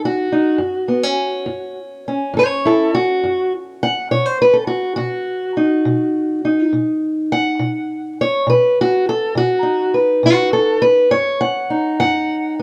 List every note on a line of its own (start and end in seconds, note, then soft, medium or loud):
0.00 0.26 B2 medium
0.00 0.31 D#4 soft
0.05 1.78 F#4 medium
0.32 0.57 D#4 soft
0.58 1.12 F#2 medium
0.88 1.03 B3 soft
1.03 2.06 C#4 soft
1.46 1.99 F#2 medium
2.08 4.07 C#4 soft
2.34 2.87 F#2 medium
2.34 2.41 A4 medium
2.39 2.66 C#5 medium
2.65 2.94 E4 medium
2.65 2.95 A4 medium
2.95 3.52 F#4 loud
3.24 3.76 F#2 medium
3.83 4.11 F#5 loud
4.11 4.63 B2 medium
4.11 4.26 C#5 medium
4.26 4.40 C5 medium
4.42 4.55 B4 loud
4.53 4.67 A4 medium
4.67 4.95 F#4 medium
4.96 5.50 B2 medium
4.96 6.72 F#4 medium
5.57 6.44 D#4 soft
5.85 6.38 B2 medium
6.45 8.24 D#4 soft
6.73 7.25 B2 medium
7.32 8.19 F#5 loud
7.59 8.12 B2 medium
8.21 8.49 C#5 medium
8.47 9.00 B2 medium
8.47 8.78 B4 medium
8.81 9.08 F#4 loud
9.09 9.37 A4 medium
9.35 9.88 B2 medium
9.35 9.95 F#4 loud
9.63 11.06 D#4 soft
9.94 10.81 B4 medium
10.23 10.76 B2 medium
10.23 10.53 F#4 loud
10.53 10.82 A4 medium
10.82 11.11 B4 loud
11.11 11.63 F#2 medium
11.11 11.40 C#5 loud
11.41 11.99 F#5 loud
11.70 12.62 D#4 soft
12.00 12.52 F#2 medium
12.00 12.57 F#5 loud